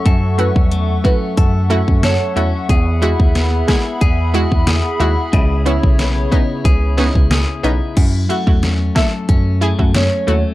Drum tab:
CC |----------------|----------------|----------------|x---------------|
HH |x-x-x-x-x-x-x-x-|x-x-x-x-x-x-x-x-|x-x-x-x-x-x-x-x-|x-x-x-x-x-x-x-x-|
SD |------------o---|----o-o-----o---|----o-----o-o---|----o-o-----o---|
BD |o--o--o-o--o----|o--o--o-o--o----|o--o--o-o--o----|o--o--o-o--o----|